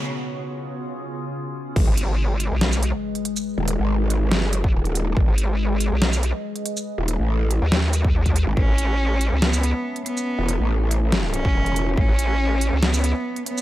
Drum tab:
CC |----------------|x---------------|----------------|----------------|
HH |----------------|--x---x---x--xx-|--x---x---x--xx-|--x---x---x--xx-|
SH |----------------|---------x-----x|----------------|---------x-----x|
SD |----------------|--------o-------|--------o-------|--------o-------|
BD |----------------|o---------------|-----------o----|o---------------|

CC |----------------|----------------|----------------|----------------|
HH |--x---x---x--xx-|--x---x---x--xx-|--x---x---x--xx-|--x---x---x--xx-|
SH |----------x-----|---------x-----x|----------------|---------x-----x|
SD |--------o-------|--------o-------|--------o-------|--------o-------|
BD |-----------o-o--|o---------------|-----------o----|o---------------|